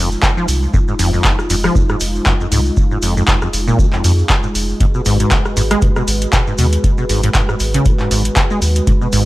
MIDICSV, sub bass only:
0, 0, Header, 1, 2, 480
1, 0, Start_track
1, 0, Tempo, 508475
1, 696, Time_signature, 4, 2, 24, 8
1, 8734, End_track
2, 0, Start_track
2, 0, Title_t, "Sub bass"
2, 0, Program_c, 0, 38
2, 0, Note_on_c, 0, 29, 92
2, 156, Note_off_c, 0, 29, 0
2, 456, Note_on_c, 0, 36, 104
2, 636, Note_off_c, 0, 36, 0
2, 936, Note_on_c, 0, 29, 99
2, 1116, Note_off_c, 0, 29, 0
2, 1416, Note_on_c, 0, 29, 103
2, 1597, Note_off_c, 0, 29, 0
2, 1896, Note_on_c, 0, 29, 89
2, 2076, Note_off_c, 0, 29, 0
2, 2376, Note_on_c, 0, 36, 101
2, 2556, Note_off_c, 0, 36, 0
2, 2856, Note_on_c, 0, 29, 97
2, 3036, Note_off_c, 0, 29, 0
2, 3336, Note_on_c, 0, 29, 102
2, 3516, Note_off_c, 0, 29, 0
2, 3816, Note_on_c, 0, 41, 82
2, 3996, Note_off_c, 0, 41, 0
2, 4296, Note_on_c, 0, 29, 93
2, 4476, Note_off_c, 0, 29, 0
2, 4775, Note_on_c, 0, 32, 93
2, 4956, Note_off_c, 0, 32, 0
2, 5255, Note_on_c, 0, 32, 100
2, 5436, Note_off_c, 0, 32, 0
2, 5735, Note_on_c, 0, 32, 92
2, 5916, Note_off_c, 0, 32, 0
2, 6215, Note_on_c, 0, 39, 103
2, 6396, Note_off_c, 0, 39, 0
2, 6696, Note_on_c, 0, 32, 98
2, 6876, Note_off_c, 0, 32, 0
2, 7175, Note_on_c, 0, 32, 101
2, 7356, Note_off_c, 0, 32, 0
2, 7655, Note_on_c, 0, 32, 94
2, 7836, Note_off_c, 0, 32, 0
2, 8135, Note_on_c, 0, 39, 100
2, 8316, Note_off_c, 0, 39, 0
2, 8616, Note_on_c, 0, 32, 99
2, 8734, Note_off_c, 0, 32, 0
2, 8734, End_track
0, 0, End_of_file